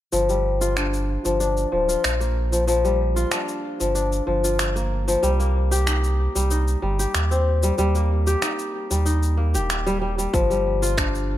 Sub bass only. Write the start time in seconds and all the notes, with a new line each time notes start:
0.13 G1
1.25 G1
1.73 D1
2.04 A#1
3.81 G1
4.27 G1
5.23 C2
6.36 C2
6.83 G1
7.15 D#2
7.79 D#2
8.91 D#2
9.55 D#1
10.34 G1